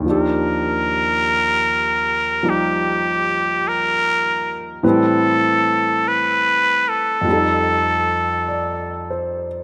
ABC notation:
X:1
M:4/4
L:1/8
Q:"Swing" 1/4=50
K:Eblyd
V:1 name="Muted trumpet"
B4 G2 B2 | A2 =B A4 z |]
V:2 name="Grand piano"
z8 | z6 d c |]
V:3 name="Grand piano" clef=bass
[E,,E,F,DG]4 [F,G,EG]4 | [A,,=E,G,C=B]4 [F,,F,G,_EA]4 |]